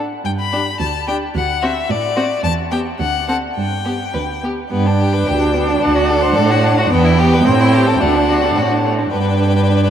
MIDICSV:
0, 0, Header, 1, 5, 480
1, 0, Start_track
1, 0, Key_signature, 1, "major"
1, 0, Tempo, 550964
1, 219, Time_signature, 2, 2, 24, 8
1, 2612, Tempo, 574163
1, 4052, Tempo, 548948
1, 8581, End_track
2, 0, Start_track
2, 0, Title_t, "Violin"
2, 0, Program_c, 0, 40
2, 218, Note_on_c, 0, 79, 50
2, 267, Note_off_c, 0, 79, 0
2, 342, Note_on_c, 0, 83, 50
2, 690, Note_off_c, 0, 83, 0
2, 695, Note_on_c, 0, 81, 45
2, 933, Note_off_c, 0, 81, 0
2, 940, Note_on_c, 0, 79, 50
2, 1009, Note_off_c, 0, 79, 0
2, 1179, Note_on_c, 0, 78, 57
2, 1413, Note_on_c, 0, 76, 59
2, 1426, Note_off_c, 0, 78, 0
2, 1662, Note_on_c, 0, 74, 64
2, 1675, Note_off_c, 0, 76, 0
2, 2119, Note_off_c, 0, 74, 0
2, 2124, Note_on_c, 0, 81, 81
2, 2194, Note_off_c, 0, 81, 0
2, 2366, Note_on_c, 0, 79, 51
2, 2436, Note_off_c, 0, 79, 0
2, 2613, Note_on_c, 0, 78, 53
2, 2843, Note_off_c, 0, 78, 0
2, 2848, Note_on_c, 0, 78, 49
2, 2915, Note_off_c, 0, 78, 0
2, 3086, Note_on_c, 0, 79, 41
2, 3797, Note_off_c, 0, 79, 0
2, 4054, Note_on_c, 0, 79, 47
2, 5011, Note_on_c, 0, 78, 53
2, 5024, Note_off_c, 0, 79, 0
2, 5963, Note_on_c, 0, 79, 63
2, 5976, Note_off_c, 0, 78, 0
2, 6927, Note_on_c, 0, 78, 53
2, 6940, Note_off_c, 0, 79, 0
2, 7717, Note_off_c, 0, 78, 0
2, 7893, Note_on_c, 0, 79, 55
2, 8581, Note_off_c, 0, 79, 0
2, 8581, End_track
3, 0, Start_track
3, 0, Title_t, "Violin"
3, 0, Program_c, 1, 40
3, 453, Note_on_c, 1, 67, 30
3, 523, Note_off_c, 1, 67, 0
3, 936, Note_on_c, 1, 67, 35
3, 1005, Note_off_c, 1, 67, 0
3, 1412, Note_on_c, 1, 66, 43
3, 1482, Note_off_c, 1, 66, 0
3, 1880, Note_on_c, 1, 66, 45
3, 1949, Note_off_c, 1, 66, 0
3, 2359, Note_on_c, 1, 67, 39
3, 2429, Note_off_c, 1, 67, 0
3, 2851, Note_on_c, 1, 69, 32
3, 2918, Note_off_c, 1, 69, 0
3, 3322, Note_on_c, 1, 67, 27
3, 3389, Note_off_c, 1, 67, 0
3, 3561, Note_on_c, 1, 71, 33
3, 3628, Note_off_c, 1, 71, 0
3, 3818, Note_on_c, 1, 67, 30
3, 3885, Note_off_c, 1, 67, 0
3, 4043, Note_on_c, 1, 59, 49
3, 4174, Note_on_c, 1, 62, 42
3, 4187, Note_off_c, 1, 59, 0
3, 4297, Note_on_c, 1, 67, 42
3, 4310, Note_off_c, 1, 62, 0
3, 4408, Note_on_c, 1, 71, 41
3, 4421, Note_off_c, 1, 67, 0
3, 4532, Note_on_c, 1, 67, 43
3, 4545, Note_off_c, 1, 71, 0
3, 4645, Note_on_c, 1, 62, 42
3, 4658, Note_off_c, 1, 67, 0
3, 4769, Note_on_c, 1, 59, 46
3, 4782, Note_off_c, 1, 62, 0
3, 4885, Note_on_c, 1, 62, 42
3, 4898, Note_off_c, 1, 59, 0
3, 4991, Note_off_c, 1, 62, 0
3, 4997, Note_on_c, 1, 62, 56
3, 5124, Note_on_c, 1, 66, 48
3, 5137, Note_off_c, 1, 62, 0
3, 5241, Note_on_c, 1, 69, 53
3, 5254, Note_off_c, 1, 66, 0
3, 5358, Note_on_c, 1, 72, 51
3, 5371, Note_off_c, 1, 69, 0
3, 5478, Note_on_c, 1, 69, 54
3, 5491, Note_off_c, 1, 72, 0
3, 5611, Note_on_c, 1, 66, 55
3, 5624, Note_off_c, 1, 69, 0
3, 5723, Note_on_c, 1, 62, 61
3, 5736, Note_off_c, 1, 66, 0
3, 5850, Note_on_c, 1, 66, 55
3, 5863, Note_off_c, 1, 62, 0
3, 5960, Note_off_c, 1, 66, 0
3, 5966, Note_on_c, 1, 59, 70
3, 6083, Note_on_c, 1, 64, 58
3, 6096, Note_off_c, 1, 59, 0
3, 6206, Note_on_c, 1, 67, 62
3, 6219, Note_off_c, 1, 64, 0
3, 6335, Note_on_c, 1, 71, 55
3, 6348, Note_off_c, 1, 67, 0
3, 6444, Note_off_c, 1, 71, 0
3, 6449, Note_on_c, 1, 60, 56
3, 6567, Note_on_c, 1, 64, 51
3, 6580, Note_off_c, 1, 60, 0
3, 6689, Note_on_c, 1, 67, 51
3, 6702, Note_off_c, 1, 64, 0
3, 6800, Note_on_c, 1, 69, 47
3, 6813, Note_off_c, 1, 67, 0
3, 6920, Note_off_c, 1, 69, 0
3, 6930, Note_on_c, 1, 57, 48
3, 7049, Note_on_c, 1, 62, 44
3, 7062, Note_off_c, 1, 57, 0
3, 7179, Note_on_c, 1, 66, 43
3, 7192, Note_off_c, 1, 62, 0
3, 7299, Note_on_c, 1, 69, 42
3, 7313, Note_off_c, 1, 66, 0
3, 7419, Note_on_c, 1, 66, 43
3, 7432, Note_off_c, 1, 69, 0
3, 7537, Note_on_c, 1, 62, 41
3, 7550, Note_off_c, 1, 66, 0
3, 7663, Note_on_c, 1, 57, 40
3, 7676, Note_off_c, 1, 62, 0
3, 7778, Note_on_c, 1, 62, 39
3, 7791, Note_off_c, 1, 57, 0
3, 7896, Note_off_c, 1, 62, 0
3, 7899, Note_on_c, 1, 71, 54
3, 8581, Note_off_c, 1, 71, 0
3, 8581, End_track
4, 0, Start_track
4, 0, Title_t, "Viola"
4, 0, Program_c, 2, 41
4, 465, Note_on_c, 2, 62, 33
4, 534, Note_off_c, 2, 62, 0
4, 942, Note_on_c, 2, 62, 36
4, 1012, Note_off_c, 2, 62, 0
4, 1419, Note_on_c, 2, 60, 40
4, 1489, Note_off_c, 2, 60, 0
4, 1888, Note_on_c, 2, 60, 45
4, 1958, Note_off_c, 2, 60, 0
4, 2367, Note_on_c, 2, 59, 43
4, 2437, Note_off_c, 2, 59, 0
4, 2853, Note_on_c, 2, 60, 35
4, 2920, Note_off_c, 2, 60, 0
4, 3330, Note_on_c, 2, 59, 25
4, 3397, Note_off_c, 2, 59, 0
4, 3813, Note_on_c, 2, 59, 26
4, 3880, Note_off_c, 2, 59, 0
4, 4049, Note_on_c, 2, 62, 46
4, 5965, Note_on_c, 2, 59, 59
4, 5978, Note_off_c, 2, 62, 0
4, 6440, Note_on_c, 2, 60, 64
4, 6453, Note_off_c, 2, 59, 0
4, 6925, Note_on_c, 2, 62, 50
4, 6938, Note_off_c, 2, 60, 0
4, 7716, Note_off_c, 2, 62, 0
4, 7896, Note_on_c, 2, 62, 60
4, 8581, Note_off_c, 2, 62, 0
4, 8581, End_track
5, 0, Start_track
5, 0, Title_t, "Cello"
5, 0, Program_c, 3, 42
5, 0, Note_on_c, 3, 45, 34
5, 115, Note_off_c, 3, 45, 0
5, 217, Note_on_c, 3, 43, 41
5, 601, Note_off_c, 3, 43, 0
5, 700, Note_on_c, 3, 38, 44
5, 1079, Note_off_c, 3, 38, 0
5, 1178, Note_on_c, 3, 38, 52
5, 1557, Note_off_c, 3, 38, 0
5, 1658, Note_on_c, 3, 45, 58
5, 2029, Note_off_c, 3, 45, 0
5, 2125, Note_on_c, 3, 40, 62
5, 2509, Note_off_c, 3, 40, 0
5, 2614, Note_on_c, 3, 38, 51
5, 2991, Note_off_c, 3, 38, 0
5, 3093, Note_on_c, 3, 43, 37
5, 3471, Note_off_c, 3, 43, 0
5, 3572, Note_on_c, 3, 38, 35
5, 3954, Note_off_c, 3, 38, 0
5, 4054, Note_on_c, 3, 43, 53
5, 4456, Note_off_c, 3, 43, 0
5, 4536, Note_on_c, 3, 38, 51
5, 4936, Note_off_c, 3, 38, 0
5, 5017, Note_on_c, 3, 38, 58
5, 5412, Note_off_c, 3, 38, 0
5, 5490, Note_on_c, 3, 45, 65
5, 5887, Note_off_c, 3, 45, 0
5, 5963, Note_on_c, 3, 40, 72
5, 6362, Note_off_c, 3, 40, 0
5, 6438, Note_on_c, 3, 45, 68
5, 6838, Note_off_c, 3, 45, 0
5, 6922, Note_on_c, 3, 38, 56
5, 7323, Note_off_c, 3, 38, 0
5, 7402, Note_on_c, 3, 45, 49
5, 7809, Note_off_c, 3, 45, 0
5, 7893, Note_on_c, 3, 43, 59
5, 8581, Note_off_c, 3, 43, 0
5, 8581, End_track
0, 0, End_of_file